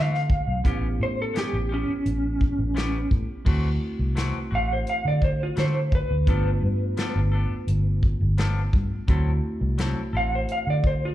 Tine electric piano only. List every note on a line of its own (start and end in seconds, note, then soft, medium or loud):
0.00 0.61 E3 soft
0.00 0.60 A3 medium
0.00 0.61 C4 medium
0.00 0.61 F#4 medium
0.64 3.42 B3 medium
0.64 3.42 C#4 medium
0.64 3.42 E4 medium
0.64 3.43 G4 medium
3.45 6.23 A3 medium
3.45 6.23 C4 medium
3.45 6.23 E4 medium
3.45 6.24 F#4 medium
6.26 9.04 A3 medium
6.26 9.04 B3 medium
6.26 9.04 D4 medium
6.26 9.05 F4 medium
9.08 11.15 A3 medium
9.08 11.15 C4 medium
9.08 11.15 E4 medium
9.08 11.15 F#4 medium